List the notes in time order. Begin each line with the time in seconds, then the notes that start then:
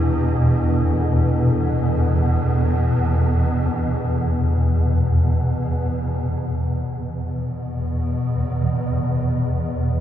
Already playing: E2 B2 D4 E4 G4
0.14 A4
5.90 E2 B2